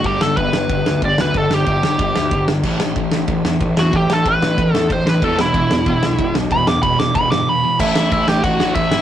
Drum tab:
CC |--------|--------|x-------|--------|
RD |x-x-x-x-|x-x-x-x-|--x-x-x-|x-x-x-x-|
SD |-o-o-o-o|-o-o-o-o|-o-o-o-o|-o-o-o-o|
BD |o-o-o-o-|o-o-o-o-|o-o-o-o-|o-o-o-o-|

CC |--------|--------|x-x-x-x-|
RD |x-x-x-x-|x-x-x---|--------|
SD |-o-o-o-o|-o-o-o--|-o-o-o-o|
BD |o-o-o-o-|o-o-o---|o-o-o-o-|